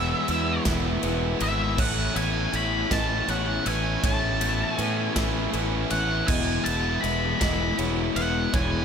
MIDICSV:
0, 0, Header, 1, 8, 480
1, 0, Start_track
1, 0, Key_signature, 4, "major"
1, 0, Tempo, 750000
1, 1143, Time_signature, 6, 3, 24, 8
1, 5663, End_track
2, 0, Start_track
2, 0, Title_t, "Lead electric guitar"
2, 0, Program_c, 0, 29
2, 0, Note_on_c, 0, 76, 86
2, 402, Note_off_c, 0, 76, 0
2, 910, Note_on_c, 0, 76, 93
2, 1150, Note_on_c, 0, 78, 105
2, 1154, Note_off_c, 0, 76, 0
2, 1370, Note_off_c, 0, 78, 0
2, 1388, Note_on_c, 0, 80, 111
2, 1632, Note_off_c, 0, 80, 0
2, 1635, Note_on_c, 0, 83, 114
2, 1871, Note_on_c, 0, 81, 106
2, 1876, Note_off_c, 0, 83, 0
2, 2109, Note_off_c, 0, 81, 0
2, 2112, Note_on_c, 0, 78, 96
2, 2351, Note_off_c, 0, 78, 0
2, 2354, Note_on_c, 0, 80, 92
2, 2590, Note_off_c, 0, 80, 0
2, 2593, Note_on_c, 0, 81, 101
2, 3047, Note_off_c, 0, 81, 0
2, 3047, Note_on_c, 0, 80, 101
2, 3281, Note_off_c, 0, 80, 0
2, 3781, Note_on_c, 0, 78, 75
2, 4014, Note_off_c, 0, 78, 0
2, 4016, Note_on_c, 0, 80, 95
2, 4250, Note_off_c, 0, 80, 0
2, 4252, Note_on_c, 0, 81, 95
2, 4485, Note_on_c, 0, 83, 105
2, 4504, Note_off_c, 0, 81, 0
2, 4716, Note_off_c, 0, 83, 0
2, 4737, Note_on_c, 0, 83, 101
2, 4963, Note_off_c, 0, 83, 0
2, 5224, Note_on_c, 0, 78, 83
2, 5470, Note_off_c, 0, 78, 0
2, 5473, Note_on_c, 0, 80, 98
2, 5663, Note_off_c, 0, 80, 0
2, 5663, End_track
3, 0, Start_track
3, 0, Title_t, "Felt piano"
3, 0, Program_c, 1, 0
3, 0, Note_on_c, 1, 73, 100
3, 181, Note_on_c, 1, 71, 81
3, 182, Note_off_c, 1, 73, 0
3, 651, Note_off_c, 1, 71, 0
3, 661, Note_on_c, 1, 71, 79
3, 1142, Note_off_c, 1, 71, 0
3, 1143, Note_on_c, 1, 73, 103
3, 1623, Note_off_c, 1, 73, 0
3, 1623, Note_on_c, 1, 76, 80
3, 1862, Note_off_c, 1, 76, 0
3, 1864, Note_on_c, 1, 75, 97
3, 2103, Note_off_c, 1, 75, 0
3, 2105, Note_on_c, 1, 73, 84
3, 2344, Note_off_c, 1, 73, 0
3, 2346, Note_on_c, 1, 71, 74
3, 2584, Note_off_c, 1, 71, 0
3, 2585, Note_on_c, 1, 73, 99
3, 3063, Note_off_c, 1, 73, 0
3, 3067, Note_on_c, 1, 71, 78
3, 3536, Note_off_c, 1, 71, 0
3, 3546, Note_on_c, 1, 71, 79
3, 4024, Note_off_c, 1, 71, 0
3, 4025, Note_on_c, 1, 75, 95
3, 4503, Note_off_c, 1, 75, 0
3, 4504, Note_on_c, 1, 76, 81
3, 4741, Note_on_c, 1, 75, 92
3, 4743, Note_off_c, 1, 76, 0
3, 4981, Note_off_c, 1, 75, 0
3, 4984, Note_on_c, 1, 73, 85
3, 5221, Note_on_c, 1, 71, 78
3, 5223, Note_off_c, 1, 73, 0
3, 5460, Note_on_c, 1, 73, 101
3, 5462, Note_off_c, 1, 71, 0
3, 5663, Note_off_c, 1, 73, 0
3, 5663, End_track
4, 0, Start_track
4, 0, Title_t, "Clean electric guitar"
4, 0, Program_c, 2, 27
4, 0, Note_on_c, 2, 40, 84
4, 0, Note_on_c, 2, 52, 81
4, 0, Note_on_c, 2, 59, 81
4, 418, Note_off_c, 2, 52, 0
4, 421, Note_on_c, 2, 52, 85
4, 659, Note_off_c, 2, 59, 0
4, 662, Note_on_c, 2, 59, 78
4, 901, Note_off_c, 2, 40, 0
4, 1142, Note_on_c, 2, 45, 84
4, 1161, Note_off_c, 2, 59, 0
4, 1380, Note_on_c, 2, 59, 80
4, 1618, Note_on_c, 2, 61, 72
4, 1855, Note_off_c, 2, 52, 0
4, 1858, Note_on_c, 2, 52, 78
4, 2099, Note_off_c, 2, 59, 0
4, 2101, Note_on_c, 2, 59, 76
4, 2332, Note_off_c, 2, 61, 0
4, 2339, Note_on_c, 2, 61, 77
4, 2341, Note_off_c, 2, 45, 0
4, 2578, Note_on_c, 2, 45, 77
4, 2815, Note_off_c, 2, 59, 0
4, 2818, Note_on_c, 2, 59, 80
4, 3050, Note_off_c, 2, 61, 0
4, 3058, Note_on_c, 2, 61, 74
4, 3299, Note_off_c, 2, 52, 0
4, 3302, Note_on_c, 2, 52, 76
4, 3537, Note_off_c, 2, 59, 0
4, 3540, Note_on_c, 2, 59, 69
4, 3773, Note_off_c, 2, 61, 0
4, 3780, Note_off_c, 2, 45, 0
4, 3781, Note_on_c, 2, 61, 70
4, 4021, Note_off_c, 2, 61, 0
4, 4024, Note_on_c, 2, 40, 80
4, 4258, Note_off_c, 2, 59, 0
4, 4261, Note_on_c, 2, 59, 75
4, 4736, Note_off_c, 2, 52, 0
4, 4739, Note_on_c, 2, 52, 81
4, 4977, Note_off_c, 2, 59, 0
4, 4980, Note_on_c, 2, 59, 70
4, 5223, Note_off_c, 2, 40, 0
4, 5460, Note_on_c, 2, 40, 79
4, 5663, Note_off_c, 2, 40, 0
4, 5663, Note_off_c, 2, 52, 0
4, 5663, Note_off_c, 2, 59, 0
4, 5663, End_track
5, 0, Start_track
5, 0, Title_t, "Distorted electric guitar"
5, 0, Program_c, 3, 30
5, 0, Note_on_c, 3, 52, 105
5, 0, Note_on_c, 3, 56, 68
5, 0, Note_on_c, 3, 59, 75
5, 0, Note_on_c, 3, 64, 81
5, 167, Note_off_c, 3, 52, 0
5, 169, Note_on_c, 3, 52, 82
5, 170, Note_off_c, 3, 56, 0
5, 178, Note_on_c, 3, 56, 79
5, 181, Note_off_c, 3, 59, 0
5, 184, Note_on_c, 3, 59, 75
5, 188, Note_off_c, 3, 64, 0
5, 191, Note_on_c, 3, 64, 90
5, 404, Note_off_c, 3, 64, 0
5, 407, Note_on_c, 3, 64, 82
5, 416, Note_off_c, 3, 59, 0
5, 418, Note_on_c, 3, 59, 80
5, 419, Note_off_c, 3, 56, 0
5, 427, Note_on_c, 3, 56, 68
5, 645, Note_off_c, 3, 52, 0
5, 647, Note_off_c, 3, 56, 0
5, 648, Note_on_c, 3, 52, 91
5, 655, Note_on_c, 3, 56, 82
5, 660, Note_off_c, 3, 59, 0
5, 662, Note_on_c, 3, 59, 99
5, 664, Note_off_c, 3, 64, 0
5, 667, Note_on_c, 3, 64, 92
5, 886, Note_off_c, 3, 64, 0
5, 889, Note_on_c, 3, 64, 87
5, 897, Note_off_c, 3, 59, 0
5, 900, Note_on_c, 3, 59, 71
5, 903, Note_off_c, 3, 56, 0
5, 910, Note_on_c, 3, 56, 67
5, 1129, Note_on_c, 3, 45, 102
5, 1132, Note_off_c, 3, 56, 0
5, 1134, Note_off_c, 3, 52, 0
5, 1137, Note_on_c, 3, 52, 96
5, 1140, Note_on_c, 3, 57, 116
5, 1142, Note_off_c, 3, 59, 0
5, 1144, Note_on_c, 3, 61, 109
5, 1146, Note_off_c, 3, 64, 0
5, 1149, Note_on_c, 3, 64, 101
5, 1367, Note_off_c, 3, 64, 0
5, 1370, Note_on_c, 3, 64, 74
5, 1379, Note_off_c, 3, 61, 0
5, 1382, Note_on_c, 3, 61, 71
5, 1389, Note_off_c, 3, 57, 0
5, 1392, Note_on_c, 3, 57, 66
5, 1611, Note_off_c, 3, 52, 0
5, 1613, Note_on_c, 3, 52, 82
5, 1619, Note_off_c, 3, 57, 0
5, 1621, Note_on_c, 3, 57, 79
5, 1624, Note_off_c, 3, 61, 0
5, 1627, Note_on_c, 3, 61, 77
5, 1629, Note_off_c, 3, 64, 0
5, 1632, Note_on_c, 3, 64, 85
5, 1849, Note_off_c, 3, 64, 0
5, 1852, Note_on_c, 3, 64, 81
5, 1855, Note_off_c, 3, 61, 0
5, 1862, Note_off_c, 3, 57, 0
5, 1863, Note_on_c, 3, 61, 79
5, 1870, Note_on_c, 3, 57, 61
5, 2088, Note_off_c, 3, 52, 0
5, 2090, Note_off_c, 3, 57, 0
5, 2091, Note_on_c, 3, 52, 83
5, 2097, Note_off_c, 3, 61, 0
5, 2097, Note_on_c, 3, 57, 92
5, 2105, Note_on_c, 3, 61, 91
5, 2108, Note_off_c, 3, 64, 0
5, 2111, Note_on_c, 3, 64, 91
5, 2329, Note_off_c, 3, 64, 0
5, 2331, Note_on_c, 3, 64, 87
5, 2335, Note_off_c, 3, 61, 0
5, 2343, Note_on_c, 3, 61, 73
5, 2344, Note_off_c, 3, 57, 0
5, 2352, Note_on_c, 3, 57, 65
5, 2569, Note_off_c, 3, 45, 0
5, 2571, Note_on_c, 3, 45, 95
5, 2574, Note_off_c, 3, 57, 0
5, 2575, Note_off_c, 3, 52, 0
5, 2577, Note_on_c, 3, 52, 93
5, 2579, Note_off_c, 3, 61, 0
5, 2582, Note_on_c, 3, 57, 115
5, 2586, Note_on_c, 3, 61, 118
5, 2588, Note_off_c, 3, 64, 0
5, 2591, Note_on_c, 3, 64, 117
5, 2807, Note_off_c, 3, 64, 0
5, 2809, Note_on_c, 3, 64, 77
5, 2814, Note_off_c, 3, 61, 0
5, 2821, Note_on_c, 3, 61, 68
5, 2822, Note_off_c, 3, 57, 0
5, 2830, Note_on_c, 3, 57, 56
5, 3047, Note_off_c, 3, 52, 0
5, 3049, Note_off_c, 3, 57, 0
5, 3050, Note_on_c, 3, 52, 81
5, 3055, Note_off_c, 3, 61, 0
5, 3056, Note_off_c, 3, 45, 0
5, 3057, Note_on_c, 3, 57, 81
5, 3063, Note_on_c, 3, 61, 85
5, 3065, Note_off_c, 3, 64, 0
5, 3068, Note_on_c, 3, 64, 82
5, 3288, Note_off_c, 3, 64, 0
5, 3291, Note_on_c, 3, 64, 83
5, 3293, Note_off_c, 3, 61, 0
5, 3301, Note_on_c, 3, 61, 75
5, 3302, Note_off_c, 3, 57, 0
5, 3310, Note_on_c, 3, 57, 71
5, 3528, Note_off_c, 3, 52, 0
5, 3530, Note_off_c, 3, 57, 0
5, 3530, Note_on_c, 3, 52, 78
5, 3535, Note_off_c, 3, 61, 0
5, 3537, Note_on_c, 3, 57, 83
5, 3543, Note_on_c, 3, 61, 84
5, 3546, Note_off_c, 3, 64, 0
5, 3549, Note_on_c, 3, 64, 90
5, 3768, Note_off_c, 3, 64, 0
5, 3771, Note_on_c, 3, 64, 81
5, 3775, Note_off_c, 3, 61, 0
5, 3782, Note_off_c, 3, 57, 0
5, 3783, Note_on_c, 3, 61, 66
5, 3790, Note_on_c, 3, 57, 59
5, 4008, Note_off_c, 3, 61, 0
5, 4009, Note_off_c, 3, 52, 0
5, 4011, Note_off_c, 3, 57, 0
5, 4011, Note_on_c, 3, 52, 101
5, 4018, Note_on_c, 3, 56, 96
5, 4026, Note_on_c, 3, 59, 101
5, 4028, Note_off_c, 3, 64, 0
5, 4031, Note_on_c, 3, 64, 114
5, 4254, Note_off_c, 3, 64, 0
5, 4256, Note_on_c, 3, 64, 77
5, 4266, Note_off_c, 3, 59, 0
5, 4268, Note_on_c, 3, 59, 74
5, 4273, Note_off_c, 3, 56, 0
5, 4275, Note_on_c, 3, 56, 60
5, 4490, Note_off_c, 3, 52, 0
5, 4493, Note_on_c, 3, 52, 81
5, 4498, Note_off_c, 3, 56, 0
5, 4501, Note_on_c, 3, 56, 81
5, 4504, Note_off_c, 3, 59, 0
5, 4506, Note_on_c, 3, 59, 86
5, 4511, Note_off_c, 3, 64, 0
5, 4514, Note_on_c, 3, 64, 85
5, 4733, Note_off_c, 3, 64, 0
5, 4735, Note_on_c, 3, 64, 78
5, 4744, Note_off_c, 3, 59, 0
5, 4747, Note_off_c, 3, 56, 0
5, 4747, Note_on_c, 3, 59, 78
5, 4754, Note_on_c, 3, 56, 71
5, 4972, Note_off_c, 3, 52, 0
5, 4974, Note_off_c, 3, 56, 0
5, 4975, Note_on_c, 3, 52, 87
5, 4982, Note_on_c, 3, 56, 93
5, 4986, Note_off_c, 3, 59, 0
5, 4988, Note_on_c, 3, 59, 88
5, 4991, Note_off_c, 3, 64, 0
5, 4994, Note_on_c, 3, 64, 96
5, 5213, Note_off_c, 3, 64, 0
5, 5215, Note_on_c, 3, 64, 84
5, 5222, Note_off_c, 3, 59, 0
5, 5224, Note_on_c, 3, 59, 71
5, 5226, Note_off_c, 3, 56, 0
5, 5234, Note_on_c, 3, 56, 67
5, 5451, Note_off_c, 3, 52, 0
5, 5454, Note_on_c, 3, 52, 109
5, 5455, Note_off_c, 3, 56, 0
5, 5463, Note_on_c, 3, 56, 110
5, 5464, Note_off_c, 3, 59, 0
5, 5467, Note_on_c, 3, 59, 115
5, 5471, Note_off_c, 3, 64, 0
5, 5474, Note_on_c, 3, 64, 112
5, 5663, Note_off_c, 3, 52, 0
5, 5663, Note_off_c, 3, 56, 0
5, 5663, Note_off_c, 3, 59, 0
5, 5663, Note_off_c, 3, 64, 0
5, 5663, End_track
6, 0, Start_track
6, 0, Title_t, "Distorted electric guitar"
6, 0, Program_c, 4, 30
6, 437, Note_on_c, 4, 52, 74
6, 658, Note_off_c, 4, 52, 0
6, 1872, Note_on_c, 4, 52, 87
6, 1875, Note_on_c, 4, 45, 80
6, 2093, Note_off_c, 4, 52, 0
6, 2348, Note_off_c, 4, 45, 0
6, 3310, Note_on_c, 4, 52, 80
6, 3314, Note_on_c, 4, 45, 78
6, 3535, Note_off_c, 4, 52, 0
6, 3788, Note_off_c, 4, 45, 0
6, 4753, Note_on_c, 4, 52, 88
6, 4972, Note_off_c, 4, 52, 0
6, 5663, End_track
7, 0, Start_track
7, 0, Title_t, "Fingered electric bass"
7, 0, Program_c, 5, 33
7, 0, Note_on_c, 5, 28, 98
7, 82, Note_off_c, 5, 28, 0
7, 184, Note_on_c, 5, 40, 100
7, 373, Note_off_c, 5, 40, 0
7, 421, Note_on_c, 5, 28, 100
7, 611, Note_off_c, 5, 28, 0
7, 661, Note_on_c, 5, 28, 94
7, 851, Note_off_c, 5, 28, 0
7, 901, Note_on_c, 5, 32, 95
7, 1142, Note_off_c, 5, 32, 0
7, 1142, Note_on_c, 5, 33, 101
7, 1331, Note_off_c, 5, 33, 0
7, 1380, Note_on_c, 5, 33, 91
7, 1570, Note_off_c, 5, 33, 0
7, 1622, Note_on_c, 5, 33, 105
7, 1811, Note_off_c, 5, 33, 0
7, 1864, Note_on_c, 5, 33, 94
7, 2052, Note_off_c, 5, 33, 0
7, 2099, Note_on_c, 5, 33, 87
7, 2289, Note_off_c, 5, 33, 0
7, 2344, Note_on_c, 5, 33, 89
7, 2532, Note_off_c, 5, 33, 0
7, 2584, Note_on_c, 5, 33, 99
7, 2961, Note_off_c, 5, 33, 0
7, 3062, Note_on_c, 5, 45, 92
7, 3251, Note_off_c, 5, 45, 0
7, 3305, Note_on_c, 5, 33, 88
7, 3492, Note_off_c, 5, 33, 0
7, 3543, Note_on_c, 5, 33, 82
7, 3731, Note_off_c, 5, 33, 0
7, 3784, Note_on_c, 5, 33, 86
7, 3972, Note_off_c, 5, 33, 0
7, 4022, Note_on_c, 5, 28, 91
7, 4211, Note_off_c, 5, 28, 0
7, 4262, Note_on_c, 5, 28, 85
7, 4451, Note_off_c, 5, 28, 0
7, 4503, Note_on_c, 5, 28, 88
7, 4692, Note_off_c, 5, 28, 0
7, 4744, Note_on_c, 5, 28, 100
7, 4932, Note_off_c, 5, 28, 0
7, 4983, Note_on_c, 5, 28, 78
7, 5172, Note_off_c, 5, 28, 0
7, 5222, Note_on_c, 5, 28, 92
7, 5411, Note_off_c, 5, 28, 0
7, 5465, Note_on_c, 5, 28, 95
7, 5663, Note_off_c, 5, 28, 0
7, 5663, End_track
8, 0, Start_track
8, 0, Title_t, "Drums"
8, 179, Note_on_c, 9, 51, 88
8, 243, Note_off_c, 9, 51, 0
8, 418, Note_on_c, 9, 38, 116
8, 418, Note_on_c, 9, 51, 113
8, 421, Note_on_c, 9, 36, 82
8, 482, Note_off_c, 9, 38, 0
8, 482, Note_off_c, 9, 51, 0
8, 485, Note_off_c, 9, 36, 0
8, 657, Note_on_c, 9, 51, 86
8, 721, Note_off_c, 9, 51, 0
8, 899, Note_on_c, 9, 51, 76
8, 963, Note_off_c, 9, 51, 0
8, 1140, Note_on_c, 9, 49, 114
8, 1142, Note_on_c, 9, 36, 117
8, 1204, Note_off_c, 9, 49, 0
8, 1206, Note_off_c, 9, 36, 0
8, 1383, Note_on_c, 9, 51, 84
8, 1447, Note_off_c, 9, 51, 0
8, 1622, Note_on_c, 9, 51, 79
8, 1686, Note_off_c, 9, 51, 0
8, 1863, Note_on_c, 9, 36, 85
8, 1864, Note_on_c, 9, 38, 115
8, 1864, Note_on_c, 9, 51, 108
8, 1927, Note_off_c, 9, 36, 0
8, 1928, Note_off_c, 9, 38, 0
8, 1928, Note_off_c, 9, 51, 0
8, 2102, Note_on_c, 9, 51, 86
8, 2166, Note_off_c, 9, 51, 0
8, 2342, Note_on_c, 9, 51, 82
8, 2406, Note_off_c, 9, 51, 0
8, 2583, Note_on_c, 9, 36, 117
8, 2583, Note_on_c, 9, 51, 127
8, 2647, Note_off_c, 9, 36, 0
8, 2647, Note_off_c, 9, 51, 0
8, 2822, Note_on_c, 9, 51, 96
8, 2886, Note_off_c, 9, 51, 0
8, 3062, Note_on_c, 9, 51, 90
8, 3126, Note_off_c, 9, 51, 0
8, 3302, Note_on_c, 9, 38, 116
8, 3302, Note_on_c, 9, 51, 121
8, 3303, Note_on_c, 9, 36, 87
8, 3366, Note_off_c, 9, 38, 0
8, 3366, Note_off_c, 9, 51, 0
8, 3367, Note_off_c, 9, 36, 0
8, 3542, Note_on_c, 9, 51, 85
8, 3606, Note_off_c, 9, 51, 0
8, 3779, Note_on_c, 9, 51, 81
8, 3843, Note_off_c, 9, 51, 0
8, 4019, Note_on_c, 9, 49, 114
8, 4022, Note_on_c, 9, 36, 109
8, 4083, Note_off_c, 9, 49, 0
8, 4086, Note_off_c, 9, 36, 0
8, 4262, Note_on_c, 9, 51, 87
8, 4326, Note_off_c, 9, 51, 0
8, 4503, Note_on_c, 9, 51, 83
8, 4567, Note_off_c, 9, 51, 0
8, 4742, Note_on_c, 9, 38, 118
8, 4742, Note_on_c, 9, 51, 107
8, 4743, Note_on_c, 9, 36, 84
8, 4806, Note_off_c, 9, 38, 0
8, 4806, Note_off_c, 9, 51, 0
8, 4807, Note_off_c, 9, 36, 0
8, 4983, Note_on_c, 9, 51, 85
8, 5047, Note_off_c, 9, 51, 0
8, 5224, Note_on_c, 9, 51, 78
8, 5288, Note_off_c, 9, 51, 0
8, 5463, Note_on_c, 9, 51, 107
8, 5464, Note_on_c, 9, 36, 122
8, 5527, Note_off_c, 9, 51, 0
8, 5528, Note_off_c, 9, 36, 0
8, 5663, End_track
0, 0, End_of_file